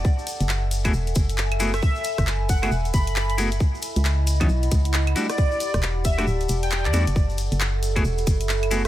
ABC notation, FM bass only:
X:1
M:4/4
L:1/16
Q:"Swing 16ths" 1/4=135
K:F#m
V:1 name="FM bass" clef=bass
z3 F,,,4- F,,, E,,,2 F,,,6 | z3 F,,,4- F,,, E,,,2 F,,,6 | z3 C,,4- C,, B,,,2 C,,4 z2 | z3 E,,,4- E,,, D,,,2 E,,,3 E,, E,, F,,,- |
F,,,3 F,,,4- F,,, E,,,2 F,,,6 |]